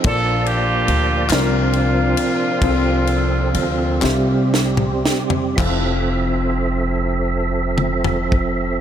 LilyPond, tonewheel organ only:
\new Staff \with { instrumentName = "Tonewheel organ" } { \time 6/8 \key f \major \tempo 4. = 41 <f bes d' d''>4. <f c' d' bes'>4. | <f c' aes' a'>4. <c g c' g'>4. | <f c' a' e''>2. | }